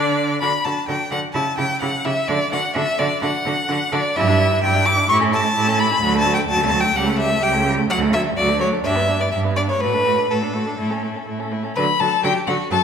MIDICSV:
0, 0, Header, 1, 5, 480
1, 0, Start_track
1, 0, Tempo, 467654
1, 429, Time_signature, 4, 2, 24, 8
1, 9067, Tempo, 483092
1, 13043, End_track
2, 0, Start_track
2, 0, Title_t, "Violin"
2, 0, Program_c, 0, 40
2, 0, Note_on_c, 0, 74, 109
2, 405, Note_off_c, 0, 74, 0
2, 424, Note_on_c, 0, 83, 106
2, 663, Note_on_c, 0, 81, 94
2, 678, Note_off_c, 0, 83, 0
2, 898, Note_off_c, 0, 81, 0
2, 905, Note_on_c, 0, 79, 91
2, 1133, Note_off_c, 0, 79, 0
2, 1140, Note_on_c, 0, 78, 114
2, 1222, Note_off_c, 0, 78, 0
2, 1373, Note_on_c, 0, 81, 95
2, 1613, Note_off_c, 0, 81, 0
2, 1623, Note_on_c, 0, 79, 110
2, 1850, Note_off_c, 0, 79, 0
2, 1856, Note_on_c, 0, 78, 103
2, 2102, Note_on_c, 0, 76, 115
2, 2118, Note_off_c, 0, 78, 0
2, 2340, Note_on_c, 0, 74, 123
2, 2355, Note_off_c, 0, 76, 0
2, 2583, Note_off_c, 0, 74, 0
2, 2589, Note_on_c, 0, 78, 107
2, 2825, Note_off_c, 0, 78, 0
2, 2834, Note_on_c, 0, 76, 118
2, 3068, Note_on_c, 0, 74, 118
2, 3083, Note_off_c, 0, 76, 0
2, 3304, Note_off_c, 0, 74, 0
2, 3310, Note_on_c, 0, 78, 112
2, 4033, Note_on_c, 0, 74, 114
2, 4048, Note_off_c, 0, 78, 0
2, 4272, Note_on_c, 0, 76, 127
2, 4287, Note_off_c, 0, 74, 0
2, 4750, Note_off_c, 0, 76, 0
2, 4755, Note_on_c, 0, 79, 117
2, 4984, Note_on_c, 0, 86, 127
2, 4999, Note_off_c, 0, 79, 0
2, 5218, Note_off_c, 0, 86, 0
2, 5224, Note_on_c, 0, 85, 125
2, 5306, Note_off_c, 0, 85, 0
2, 5471, Note_on_c, 0, 81, 127
2, 5948, Note_on_c, 0, 83, 127
2, 5963, Note_off_c, 0, 81, 0
2, 6347, Note_off_c, 0, 83, 0
2, 6351, Note_on_c, 0, 81, 127
2, 6505, Note_off_c, 0, 81, 0
2, 6512, Note_on_c, 0, 79, 110
2, 6574, Note_off_c, 0, 79, 0
2, 6664, Note_on_c, 0, 81, 120
2, 6820, Note_off_c, 0, 81, 0
2, 6833, Note_on_c, 0, 81, 127
2, 6987, Note_on_c, 0, 79, 127
2, 7002, Note_off_c, 0, 81, 0
2, 7143, Note_on_c, 0, 78, 121
2, 7158, Note_off_c, 0, 79, 0
2, 7373, Note_off_c, 0, 78, 0
2, 7379, Note_on_c, 0, 76, 127
2, 7622, Note_on_c, 0, 79, 127
2, 7637, Note_off_c, 0, 76, 0
2, 7863, Note_off_c, 0, 79, 0
2, 8109, Note_on_c, 0, 78, 127
2, 8191, Note_off_c, 0, 78, 0
2, 8346, Note_on_c, 0, 76, 119
2, 8428, Note_off_c, 0, 76, 0
2, 8591, Note_on_c, 0, 74, 110
2, 8824, Note_off_c, 0, 74, 0
2, 8829, Note_on_c, 0, 73, 116
2, 8912, Note_off_c, 0, 73, 0
2, 9072, Note_on_c, 0, 76, 116
2, 9439, Note_on_c, 0, 74, 92
2, 9454, Note_off_c, 0, 76, 0
2, 9538, Note_off_c, 0, 74, 0
2, 9544, Note_on_c, 0, 76, 95
2, 9623, Note_off_c, 0, 76, 0
2, 9791, Note_on_c, 0, 74, 112
2, 9839, Note_off_c, 0, 74, 0
2, 9926, Note_on_c, 0, 73, 100
2, 10030, Note_on_c, 0, 71, 123
2, 10045, Note_off_c, 0, 73, 0
2, 10529, Note_on_c, 0, 69, 94
2, 10544, Note_off_c, 0, 71, 0
2, 11491, Note_off_c, 0, 69, 0
2, 11973, Note_on_c, 0, 71, 111
2, 12052, Note_off_c, 0, 71, 0
2, 12218, Note_on_c, 0, 69, 85
2, 12441, Note_off_c, 0, 69, 0
2, 12447, Note_on_c, 0, 67, 97
2, 12676, Note_off_c, 0, 67, 0
2, 12686, Note_on_c, 0, 66, 98
2, 12911, Note_off_c, 0, 66, 0
2, 12922, Note_on_c, 0, 69, 103
2, 13001, Note_off_c, 0, 69, 0
2, 13043, End_track
3, 0, Start_track
3, 0, Title_t, "Violin"
3, 0, Program_c, 1, 40
3, 0, Note_on_c, 1, 74, 96
3, 410, Note_off_c, 1, 74, 0
3, 429, Note_on_c, 1, 66, 77
3, 511, Note_off_c, 1, 66, 0
3, 670, Note_on_c, 1, 66, 72
3, 753, Note_off_c, 1, 66, 0
3, 912, Note_on_c, 1, 66, 77
3, 994, Note_off_c, 1, 66, 0
3, 1147, Note_on_c, 1, 66, 79
3, 1229, Note_off_c, 1, 66, 0
3, 1378, Note_on_c, 1, 67, 66
3, 1460, Note_off_c, 1, 67, 0
3, 1618, Note_on_c, 1, 67, 75
3, 1700, Note_off_c, 1, 67, 0
3, 1865, Note_on_c, 1, 67, 73
3, 1947, Note_off_c, 1, 67, 0
3, 2102, Note_on_c, 1, 67, 84
3, 2185, Note_off_c, 1, 67, 0
3, 2347, Note_on_c, 1, 66, 72
3, 2429, Note_off_c, 1, 66, 0
3, 2595, Note_on_c, 1, 66, 84
3, 2677, Note_off_c, 1, 66, 0
3, 2832, Note_on_c, 1, 66, 83
3, 2914, Note_off_c, 1, 66, 0
3, 3076, Note_on_c, 1, 66, 81
3, 3158, Note_off_c, 1, 66, 0
3, 3317, Note_on_c, 1, 66, 83
3, 3399, Note_off_c, 1, 66, 0
3, 3564, Note_on_c, 1, 66, 82
3, 3646, Note_off_c, 1, 66, 0
3, 3811, Note_on_c, 1, 66, 84
3, 3894, Note_off_c, 1, 66, 0
3, 4039, Note_on_c, 1, 66, 87
3, 4121, Note_off_c, 1, 66, 0
3, 4283, Note_on_c, 1, 67, 87
3, 4408, Note_on_c, 1, 64, 80
3, 4423, Note_off_c, 1, 67, 0
3, 4529, Note_on_c, 1, 67, 83
3, 4544, Note_off_c, 1, 64, 0
3, 4645, Note_on_c, 1, 64, 86
3, 4661, Note_off_c, 1, 67, 0
3, 4757, Note_off_c, 1, 64, 0
3, 4764, Note_on_c, 1, 67, 92
3, 4881, Note_on_c, 1, 64, 83
3, 4897, Note_off_c, 1, 67, 0
3, 4996, Note_on_c, 1, 67, 87
3, 5011, Note_off_c, 1, 64, 0
3, 5121, Note_on_c, 1, 64, 73
3, 5136, Note_off_c, 1, 67, 0
3, 5229, Note_off_c, 1, 64, 0
3, 5235, Note_on_c, 1, 67, 89
3, 5354, Note_on_c, 1, 69, 76
3, 5369, Note_off_c, 1, 67, 0
3, 5462, Note_on_c, 1, 67, 83
3, 5478, Note_off_c, 1, 69, 0
3, 5580, Note_on_c, 1, 69, 82
3, 5596, Note_off_c, 1, 67, 0
3, 5702, Note_off_c, 1, 69, 0
3, 5712, Note_on_c, 1, 67, 92
3, 5828, Note_on_c, 1, 69, 81
3, 5843, Note_off_c, 1, 67, 0
3, 5951, Note_on_c, 1, 67, 92
3, 5966, Note_off_c, 1, 69, 0
3, 6066, Note_on_c, 1, 69, 87
3, 6081, Note_off_c, 1, 67, 0
3, 6180, Note_off_c, 1, 69, 0
3, 6187, Note_on_c, 1, 66, 84
3, 6309, Note_on_c, 1, 69, 85
3, 6324, Note_off_c, 1, 66, 0
3, 6428, Note_on_c, 1, 66, 92
3, 6443, Note_off_c, 1, 69, 0
3, 6555, Note_on_c, 1, 69, 84
3, 6571, Note_off_c, 1, 66, 0
3, 6652, Note_off_c, 1, 69, 0
3, 6658, Note_on_c, 1, 66, 88
3, 6788, Note_on_c, 1, 69, 86
3, 6803, Note_off_c, 1, 66, 0
3, 6903, Note_on_c, 1, 66, 84
3, 6919, Note_off_c, 1, 69, 0
3, 7028, Note_on_c, 1, 69, 71
3, 7043, Note_off_c, 1, 66, 0
3, 7141, Note_off_c, 1, 69, 0
3, 7148, Note_on_c, 1, 67, 86
3, 7258, Note_on_c, 1, 69, 76
3, 7273, Note_off_c, 1, 67, 0
3, 7371, Note_on_c, 1, 67, 90
3, 7387, Note_off_c, 1, 69, 0
3, 7495, Note_on_c, 1, 69, 84
3, 7510, Note_off_c, 1, 67, 0
3, 7605, Note_off_c, 1, 69, 0
3, 7611, Note_on_c, 1, 67, 88
3, 7737, Note_on_c, 1, 69, 76
3, 7753, Note_off_c, 1, 67, 0
3, 7863, Note_on_c, 1, 67, 82
3, 7879, Note_off_c, 1, 69, 0
3, 7980, Note_on_c, 1, 69, 82
3, 7995, Note_off_c, 1, 67, 0
3, 8102, Note_off_c, 1, 69, 0
3, 8106, Note_on_c, 1, 66, 84
3, 8225, Note_on_c, 1, 69, 76
3, 8240, Note_off_c, 1, 66, 0
3, 8351, Note_on_c, 1, 66, 90
3, 8367, Note_off_c, 1, 69, 0
3, 8462, Note_on_c, 1, 69, 84
3, 8477, Note_off_c, 1, 66, 0
3, 8584, Note_off_c, 1, 69, 0
3, 8592, Note_on_c, 1, 66, 92
3, 8714, Note_on_c, 1, 69, 79
3, 8729, Note_off_c, 1, 66, 0
3, 8830, Note_on_c, 1, 66, 81
3, 8845, Note_off_c, 1, 69, 0
3, 8953, Note_on_c, 1, 69, 68
3, 8969, Note_off_c, 1, 66, 0
3, 9071, Note_off_c, 1, 69, 0
3, 9075, Note_on_c, 1, 67, 81
3, 9196, Note_on_c, 1, 71, 70
3, 9211, Note_off_c, 1, 67, 0
3, 9312, Note_on_c, 1, 67, 76
3, 9327, Note_off_c, 1, 71, 0
3, 9425, Note_on_c, 1, 71, 74
3, 9440, Note_off_c, 1, 67, 0
3, 9545, Note_off_c, 1, 71, 0
3, 9553, Note_on_c, 1, 67, 71
3, 9668, Note_on_c, 1, 71, 66
3, 9683, Note_off_c, 1, 67, 0
3, 9802, Note_on_c, 1, 67, 67
3, 9817, Note_off_c, 1, 71, 0
3, 9923, Note_on_c, 1, 71, 70
3, 9938, Note_off_c, 1, 67, 0
3, 10033, Note_off_c, 1, 71, 0
3, 10039, Note_on_c, 1, 66, 74
3, 10165, Note_on_c, 1, 69, 67
3, 10180, Note_off_c, 1, 66, 0
3, 10294, Note_on_c, 1, 66, 70
3, 10309, Note_off_c, 1, 69, 0
3, 10416, Note_on_c, 1, 69, 68
3, 10431, Note_off_c, 1, 66, 0
3, 10529, Note_off_c, 1, 69, 0
3, 10535, Note_on_c, 1, 66, 63
3, 10656, Note_on_c, 1, 69, 69
3, 10670, Note_off_c, 1, 66, 0
3, 10773, Note_on_c, 1, 66, 65
3, 10788, Note_off_c, 1, 69, 0
3, 10881, Note_on_c, 1, 69, 52
3, 10896, Note_off_c, 1, 66, 0
3, 10996, Note_off_c, 1, 69, 0
3, 11002, Note_on_c, 1, 64, 76
3, 11124, Note_on_c, 1, 69, 68
3, 11139, Note_off_c, 1, 64, 0
3, 11251, Note_on_c, 1, 64, 69
3, 11265, Note_off_c, 1, 69, 0
3, 11379, Note_on_c, 1, 69, 58
3, 11394, Note_off_c, 1, 64, 0
3, 11494, Note_off_c, 1, 69, 0
3, 11498, Note_on_c, 1, 64, 61
3, 11612, Note_on_c, 1, 69, 63
3, 11627, Note_off_c, 1, 64, 0
3, 11737, Note_on_c, 1, 64, 66
3, 11752, Note_off_c, 1, 69, 0
3, 11849, Note_on_c, 1, 69, 63
3, 11863, Note_off_c, 1, 64, 0
3, 11966, Note_off_c, 1, 69, 0
3, 11972, Note_on_c, 1, 83, 100
3, 12212, Note_on_c, 1, 81, 111
3, 12227, Note_off_c, 1, 83, 0
3, 12446, Note_off_c, 1, 81, 0
3, 12452, Note_on_c, 1, 79, 116
3, 12531, Note_off_c, 1, 79, 0
3, 12680, Note_on_c, 1, 78, 99
3, 12759, Note_off_c, 1, 78, 0
3, 12918, Note_on_c, 1, 81, 118
3, 13043, Note_off_c, 1, 81, 0
3, 13043, End_track
4, 0, Start_track
4, 0, Title_t, "Viola"
4, 0, Program_c, 2, 41
4, 0, Note_on_c, 2, 62, 108
4, 412, Note_off_c, 2, 62, 0
4, 424, Note_on_c, 2, 62, 75
4, 507, Note_off_c, 2, 62, 0
4, 669, Note_on_c, 2, 62, 65
4, 752, Note_off_c, 2, 62, 0
4, 908, Note_on_c, 2, 62, 74
4, 990, Note_off_c, 2, 62, 0
4, 1143, Note_on_c, 2, 62, 76
4, 1225, Note_off_c, 2, 62, 0
4, 1381, Note_on_c, 2, 64, 91
4, 1463, Note_off_c, 2, 64, 0
4, 1618, Note_on_c, 2, 64, 70
4, 1700, Note_off_c, 2, 64, 0
4, 1862, Note_on_c, 2, 64, 73
4, 1944, Note_off_c, 2, 64, 0
4, 2100, Note_on_c, 2, 64, 76
4, 2182, Note_off_c, 2, 64, 0
4, 2338, Note_on_c, 2, 62, 92
4, 2420, Note_off_c, 2, 62, 0
4, 2580, Note_on_c, 2, 62, 77
4, 2662, Note_off_c, 2, 62, 0
4, 2820, Note_on_c, 2, 62, 93
4, 2902, Note_off_c, 2, 62, 0
4, 3064, Note_on_c, 2, 62, 81
4, 3146, Note_off_c, 2, 62, 0
4, 3301, Note_on_c, 2, 62, 91
4, 3384, Note_off_c, 2, 62, 0
4, 3547, Note_on_c, 2, 62, 80
4, 3629, Note_off_c, 2, 62, 0
4, 3783, Note_on_c, 2, 62, 86
4, 3865, Note_off_c, 2, 62, 0
4, 4026, Note_on_c, 2, 62, 97
4, 4108, Note_off_c, 2, 62, 0
4, 4271, Note_on_c, 2, 64, 92
4, 4388, Note_on_c, 2, 62, 84
4, 4404, Note_off_c, 2, 64, 0
4, 4506, Note_on_c, 2, 64, 80
4, 4522, Note_off_c, 2, 62, 0
4, 4629, Note_on_c, 2, 62, 75
4, 4644, Note_off_c, 2, 64, 0
4, 4735, Note_off_c, 2, 62, 0
4, 4741, Note_on_c, 2, 64, 86
4, 4861, Note_on_c, 2, 62, 77
4, 4877, Note_off_c, 2, 64, 0
4, 4982, Note_on_c, 2, 64, 88
4, 4998, Note_off_c, 2, 62, 0
4, 5102, Note_on_c, 2, 62, 78
4, 5118, Note_off_c, 2, 64, 0
4, 5220, Note_off_c, 2, 62, 0
4, 5227, Note_on_c, 2, 64, 105
4, 5341, Note_on_c, 2, 61, 81
4, 5357, Note_off_c, 2, 64, 0
4, 5458, Note_on_c, 2, 64, 90
4, 5473, Note_off_c, 2, 61, 0
4, 5583, Note_on_c, 2, 61, 87
4, 5598, Note_off_c, 2, 64, 0
4, 5688, Note_off_c, 2, 61, 0
4, 5694, Note_on_c, 2, 64, 90
4, 5821, Note_on_c, 2, 61, 87
4, 5836, Note_off_c, 2, 64, 0
4, 5941, Note_on_c, 2, 64, 90
4, 5956, Note_off_c, 2, 61, 0
4, 6060, Note_on_c, 2, 61, 76
4, 6076, Note_off_c, 2, 64, 0
4, 6170, Note_off_c, 2, 61, 0
4, 6176, Note_on_c, 2, 54, 91
4, 6299, Note_on_c, 2, 57, 93
4, 6315, Note_off_c, 2, 54, 0
4, 6419, Note_on_c, 2, 54, 82
4, 6434, Note_off_c, 2, 57, 0
4, 6538, Note_on_c, 2, 57, 76
4, 6553, Note_off_c, 2, 54, 0
4, 6654, Note_off_c, 2, 57, 0
4, 6660, Note_on_c, 2, 54, 93
4, 6779, Note_on_c, 2, 57, 81
4, 6795, Note_off_c, 2, 54, 0
4, 6900, Note_on_c, 2, 54, 94
4, 6915, Note_off_c, 2, 57, 0
4, 7011, Note_on_c, 2, 57, 92
4, 7027, Note_off_c, 2, 54, 0
4, 7126, Note_off_c, 2, 57, 0
4, 7132, Note_on_c, 2, 55, 91
4, 7251, Note_on_c, 2, 57, 85
4, 7266, Note_off_c, 2, 55, 0
4, 7372, Note_on_c, 2, 55, 89
4, 7388, Note_off_c, 2, 57, 0
4, 7494, Note_on_c, 2, 57, 92
4, 7510, Note_off_c, 2, 55, 0
4, 7609, Note_off_c, 2, 57, 0
4, 7615, Note_on_c, 2, 55, 84
4, 7733, Note_on_c, 2, 57, 78
4, 7749, Note_off_c, 2, 55, 0
4, 7858, Note_on_c, 2, 55, 92
4, 7873, Note_off_c, 2, 57, 0
4, 7978, Note_on_c, 2, 57, 85
4, 7993, Note_off_c, 2, 55, 0
4, 8096, Note_off_c, 2, 57, 0
4, 8103, Note_on_c, 2, 54, 90
4, 8227, Note_on_c, 2, 57, 81
4, 8242, Note_off_c, 2, 54, 0
4, 8346, Note_on_c, 2, 54, 81
4, 8361, Note_off_c, 2, 57, 0
4, 8467, Note_on_c, 2, 57, 68
4, 8482, Note_off_c, 2, 54, 0
4, 8577, Note_off_c, 2, 57, 0
4, 8584, Note_on_c, 2, 54, 91
4, 8706, Note_on_c, 2, 57, 75
4, 8722, Note_off_c, 2, 54, 0
4, 8819, Note_on_c, 2, 54, 91
4, 8835, Note_off_c, 2, 57, 0
4, 8944, Note_on_c, 2, 57, 76
4, 8960, Note_off_c, 2, 54, 0
4, 9059, Note_off_c, 2, 57, 0
4, 9065, Note_on_c, 2, 62, 90
4, 9186, Note_on_c, 2, 59, 77
4, 9201, Note_off_c, 2, 62, 0
4, 9305, Note_on_c, 2, 62, 77
4, 9319, Note_off_c, 2, 59, 0
4, 9429, Note_on_c, 2, 59, 71
4, 9444, Note_off_c, 2, 62, 0
4, 9539, Note_off_c, 2, 59, 0
4, 9545, Note_on_c, 2, 62, 70
4, 9672, Note_on_c, 2, 59, 71
4, 9686, Note_off_c, 2, 62, 0
4, 9787, Note_on_c, 2, 62, 73
4, 9802, Note_off_c, 2, 59, 0
4, 9909, Note_on_c, 2, 59, 69
4, 9924, Note_off_c, 2, 62, 0
4, 10027, Note_off_c, 2, 59, 0
4, 10033, Note_on_c, 2, 57, 74
4, 10156, Note_on_c, 2, 62, 64
4, 10171, Note_off_c, 2, 57, 0
4, 10273, Note_on_c, 2, 57, 71
4, 10288, Note_off_c, 2, 62, 0
4, 10396, Note_on_c, 2, 62, 61
4, 10411, Note_off_c, 2, 57, 0
4, 10514, Note_off_c, 2, 62, 0
4, 10520, Note_on_c, 2, 57, 76
4, 10643, Note_on_c, 2, 62, 66
4, 10658, Note_off_c, 2, 57, 0
4, 10758, Note_on_c, 2, 57, 77
4, 10773, Note_off_c, 2, 62, 0
4, 10879, Note_on_c, 2, 62, 70
4, 10894, Note_off_c, 2, 57, 0
4, 10999, Note_off_c, 2, 62, 0
4, 11005, Note_on_c, 2, 57, 78
4, 11127, Note_on_c, 2, 61, 67
4, 11142, Note_off_c, 2, 57, 0
4, 11248, Note_on_c, 2, 57, 69
4, 11263, Note_off_c, 2, 61, 0
4, 11370, Note_on_c, 2, 61, 65
4, 11385, Note_off_c, 2, 57, 0
4, 11483, Note_off_c, 2, 61, 0
4, 11489, Note_on_c, 2, 57, 60
4, 11607, Note_on_c, 2, 61, 61
4, 11622, Note_off_c, 2, 57, 0
4, 11731, Note_on_c, 2, 57, 62
4, 11746, Note_off_c, 2, 61, 0
4, 11854, Note_on_c, 2, 61, 64
4, 11869, Note_off_c, 2, 57, 0
4, 11967, Note_off_c, 2, 61, 0
4, 11973, Note_on_c, 2, 54, 94
4, 12052, Note_off_c, 2, 54, 0
4, 12213, Note_on_c, 2, 54, 77
4, 12292, Note_off_c, 2, 54, 0
4, 12442, Note_on_c, 2, 54, 91
4, 12521, Note_off_c, 2, 54, 0
4, 12683, Note_on_c, 2, 54, 84
4, 12763, Note_off_c, 2, 54, 0
4, 12917, Note_on_c, 2, 54, 88
4, 12996, Note_off_c, 2, 54, 0
4, 13043, End_track
5, 0, Start_track
5, 0, Title_t, "Cello"
5, 0, Program_c, 3, 42
5, 0, Note_on_c, 3, 50, 98
5, 412, Note_off_c, 3, 50, 0
5, 430, Note_on_c, 3, 50, 81
5, 512, Note_off_c, 3, 50, 0
5, 669, Note_on_c, 3, 50, 74
5, 751, Note_off_c, 3, 50, 0
5, 906, Note_on_c, 3, 50, 91
5, 988, Note_off_c, 3, 50, 0
5, 1143, Note_on_c, 3, 50, 84
5, 1225, Note_off_c, 3, 50, 0
5, 1379, Note_on_c, 3, 49, 87
5, 1461, Note_off_c, 3, 49, 0
5, 1624, Note_on_c, 3, 49, 90
5, 1706, Note_off_c, 3, 49, 0
5, 1867, Note_on_c, 3, 49, 91
5, 1949, Note_off_c, 3, 49, 0
5, 2107, Note_on_c, 3, 49, 90
5, 2189, Note_off_c, 3, 49, 0
5, 2352, Note_on_c, 3, 50, 107
5, 2434, Note_off_c, 3, 50, 0
5, 2591, Note_on_c, 3, 50, 78
5, 2673, Note_off_c, 3, 50, 0
5, 2827, Note_on_c, 3, 50, 95
5, 2910, Note_off_c, 3, 50, 0
5, 3069, Note_on_c, 3, 50, 103
5, 3151, Note_off_c, 3, 50, 0
5, 3311, Note_on_c, 3, 50, 93
5, 3393, Note_off_c, 3, 50, 0
5, 3547, Note_on_c, 3, 50, 93
5, 3629, Note_off_c, 3, 50, 0
5, 3787, Note_on_c, 3, 50, 95
5, 3869, Note_off_c, 3, 50, 0
5, 4029, Note_on_c, 3, 50, 96
5, 4111, Note_off_c, 3, 50, 0
5, 4269, Note_on_c, 3, 43, 125
5, 4692, Note_off_c, 3, 43, 0
5, 4752, Note_on_c, 3, 43, 102
5, 5171, Note_off_c, 3, 43, 0
5, 5229, Note_on_c, 3, 45, 112
5, 5649, Note_off_c, 3, 45, 0
5, 5709, Note_on_c, 3, 45, 109
5, 6130, Note_off_c, 3, 45, 0
5, 6186, Note_on_c, 3, 38, 117
5, 6608, Note_off_c, 3, 38, 0
5, 6664, Note_on_c, 3, 38, 110
5, 7086, Note_off_c, 3, 38, 0
5, 7140, Note_on_c, 3, 37, 99
5, 7564, Note_off_c, 3, 37, 0
5, 7624, Note_on_c, 3, 37, 117
5, 8048, Note_off_c, 3, 37, 0
5, 8106, Note_on_c, 3, 38, 113
5, 8529, Note_off_c, 3, 38, 0
5, 8592, Note_on_c, 3, 38, 104
5, 9014, Note_off_c, 3, 38, 0
5, 9070, Note_on_c, 3, 43, 100
5, 9490, Note_off_c, 3, 43, 0
5, 9549, Note_on_c, 3, 43, 98
5, 9977, Note_off_c, 3, 43, 0
5, 10038, Note_on_c, 3, 45, 93
5, 10469, Note_off_c, 3, 45, 0
5, 10531, Note_on_c, 3, 45, 77
5, 10954, Note_off_c, 3, 45, 0
5, 11015, Note_on_c, 3, 45, 74
5, 11436, Note_off_c, 3, 45, 0
5, 11497, Note_on_c, 3, 45, 85
5, 11918, Note_off_c, 3, 45, 0
5, 11976, Note_on_c, 3, 50, 105
5, 12055, Note_off_c, 3, 50, 0
5, 12212, Note_on_c, 3, 50, 80
5, 12291, Note_off_c, 3, 50, 0
5, 12451, Note_on_c, 3, 50, 96
5, 12531, Note_off_c, 3, 50, 0
5, 12687, Note_on_c, 3, 50, 93
5, 12766, Note_off_c, 3, 50, 0
5, 12917, Note_on_c, 3, 42, 86
5, 12996, Note_off_c, 3, 42, 0
5, 13043, End_track
0, 0, End_of_file